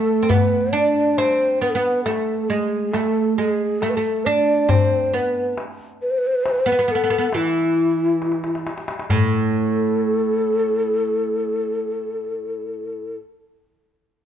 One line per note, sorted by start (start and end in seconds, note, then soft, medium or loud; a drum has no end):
0.00 0.25 A3 medium
0.00 0.31 A4 medium
0.23 0.30 C4 medium
0.29 0.75 B3 medium
0.29 0.75 B4 medium
0.29 darbuka dum loud
0.73 1.18 D4 medium
0.73 1.19 D5 loud
1.18 1.64 C4 medium
1.18 1.61 C5 loud
1.18 darbuka tek medium
1.41 darbuka ka soft
1.61 1.74 B3 medium
1.61 1.72 B4 loud
1.70 1.76 A4 medium
1.75 2.05 B3 medium
1.75 2.04 B4 loud
2.04 2.49 A3 medium
2.04 2.44 A4 medium
2.04 darbuka tek medium
2.44 2.50 A4 medium
2.49 2.93 G#3 medium
2.49 2.94 G#4 medium
2.93 3.38 A3 medium
2.93 3.38 A4 medium
2.93 darbuka tek medium
3.38 3.79 G#3 medium
3.38 3.49 A4 medium
3.38 darbuka ka soft
3.49 3.83 G#4 medium
3.81 3.96 A3 medium
3.81 3.91 A4 medium
3.81 darbuka tek medium
3.90 3.97 B4 medium
3.95 4.27 A3 medium
3.95 4.27 A4 medium
4.25 4.68 D4 medium
4.25 4.72 D5 medium
4.69 5.15 C4 medium
4.69 5.17 C5 medium
4.69 darbuka dum medium
5.13 5.55 B3 medium
5.13 5.59 B4 medium
5.13 darbuka ka soft
5.58 darbuka tek medium
5.80 darbuka ka soft
6.02 6.12 B4 medium
6.10 6.20 C5 medium
6.18 6.28 B4 medium
6.27 6.36 C5 medium
6.35 6.45 B4 medium
6.44 6.53 C5 medium
6.44 darbuka tek medium
6.51 6.61 B4 medium
6.60 6.68 C5 medium
6.66 6.71 B3 medium
6.66 6.93 B4 loud
6.72 6.78 B3 medium
6.79 6.87 B3 medium
6.88 6.94 B3 medium
6.88 7.37 A4 loud
6.88 darbuka ka soft
6.95 7.02 B3 medium
7.04 7.09 B3 medium
7.10 7.17 B3 medium
7.18 7.26 B3 medium
7.33 8.62 E3 medium
7.33 8.67 E4 medium
7.33 darbuka tek medium
7.77 darbuka ka soft
8.22 darbuka tek medium
8.32 darbuka ka medium
8.44 darbuka tek medium
8.55 darbuka ka medium
8.67 darbuka tek medium
8.78 darbuka ka medium
8.88 darbuka tek medium
8.99 darbuka ka medium
9.10 13.16 A2 medium
9.10 13.16 A4 medium
9.10 darbuka dum medium